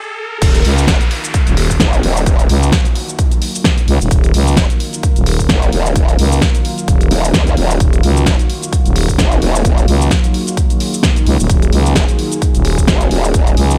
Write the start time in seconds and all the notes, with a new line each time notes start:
Already playing: riser
0.42 D#1 A#3 D#4 F4 F#4, kick, closed hi-hat, crash, downlifter, shaker
0.55 closed hi-hat, shaker
0.65 C#2, open hi-hat
0.78 shaker
0.87 F1, kick, snare, closed hi-hat, shaker
0.97 F#3, closed hi-hat, shaker
1.11 open hi-hat
1.24 closed hi-hat, shaker
1.34 kick, closed hi-hat, shaker
1.47 D#1, closed hi-hat, shaker
1.57 open hi-hat
1.70 kick, shaker
1.80 F#1, kick, snare, closed hi-hat, shaker
1.93 closed hi-hat, shaker
2.03 D#1, open hi-hat
2.17 shaker
2.22 F5
2.26 kick, closed hi-hat, shaker
2.39 closed hi-hat, shaker
2.49 C#2, open hi-hat
2.63 shaker
2.72 kick, snare, closed hi-hat, shaker
2.85 closed hi-hat, shaker
2.95 open hi-hat
3.08 closed hi-hat, shaker
3.19 kick, closed hi-hat, shaker
3.31 closed hi-hat, shaker
3.42 open hi-hat
3.55 shaker
3.64 kick, snare, closed hi-hat, shaker
3.78 closed hi-hat, shaker
3.88 C#2, open hi-hat
4.01 D#1, shaker
4.11 D#1 A#4, kick, closed hi-hat, shaker
4.24 closed hi-hat, shaker
4.34 C#2, open hi-hat
4.48 shaker
4.57 F1, kick, snare, closed hi-hat, shaker
4.70 closed hi-hat, shaker
4.80 open hi-hat
4.93 closed hi-hat, shaker
5.03 kick, closed hi-hat, shaker
5.16 D#1, closed hi-hat, shaker
5.26 open hi-hat
5.39 kick, shaker
5.49 F#1, kick, snare, closed hi-hat, shaker
5.62 closed hi-hat, shaker
5.73 D#1, open hi-hat
5.86 shaker
5.96 kick, closed hi-hat, shaker
6.09 closed hi-hat, shaker
6.19 C#2, open hi-hat
6.32 shaker
6.41 kick, snare, closed hi-hat, shaker
6.55 closed hi-hat, shaker
6.65 open hi-hat
6.78 closed hi-hat, shaker
6.88 D#1, kick, closed hi-hat, shaker
7.01 closed hi-hat, shaker
7.11 D#1, open hi-hat
7.25 shaker
7.34 D#2, kick, snare, closed hi-hat, shaker
7.47 closed hi-hat, shaker
7.57 D#1, open hi-hat
7.71 shaker
7.80 D#1, kick, closed hi-hat, shaker
7.93 closed hi-hat, shaker
8.03 C#2, open hi-hat
8.17 shaker
8.26 F1, kick, snare, closed hi-hat, shaker
8.39 closed hi-hat, shaker
8.50 open hi-hat
8.62 closed hi-hat, shaker
8.73 kick, closed hi-hat, shaker
8.85 D#1, closed hi-hat, shaker
8.96 open hi-hat
9.08 kick, shaker
9.18 F#1, kick, snare, closed hi-hat, shaker
9.32 closed hi-hat, shaker
9.42 D#1, open hi-hat
9.55 shaker
9.60 G#4
9.65 kick, closed hi-hat, shaker
9.78 closed hi-hat, shaker
9.88 C#2, open hi-hat
10.02 shaker
10.11 kick, snare, closed hi-hat, shaker
10.24 closed hi-hat, shaker
10.34 open hi-hat
10.47 closed hi-hat, shaker
10.57 kick, closed hi-hat, shaker
10.70 closed hi-hat, shaker
10.80 open hi-hat
10.94 shaker
11.03 kick, snare, closed hi-hat, shaker
11.16 closed hi-hat, shaker
11.26 C#2, open hi-hat
11.39 D#1, shaker
11.49 D#1 G#4, kick, closed hi-hat, shaker
11.62 closed hi-hat, shaker
11.73 C#2, open hi-hat
11.86 shaker
11.95 F1, kick, snare, closed hi-hat, shaker
12.09 closed hi-hat, shaker
12.19 open hi-hat
12.32 closed hi-hat, shaker
12.42 kick, closed hi-hat, shaker
12.55 D#1, closed hi-hat, shaker
12.65 open hi-hat
12.78 kick, shaker
12.88 F#1, kick, snare, closed hi-hat, shaker
13.01 closed hi-hat, shaker
13.11 D#1, open hi-hat
13.24 shaker
13.34 kick, closed hi-hat, shaker
13.47 closed hi-hat, shaker
13.57 C#2, open hi-hat
13.71 shaker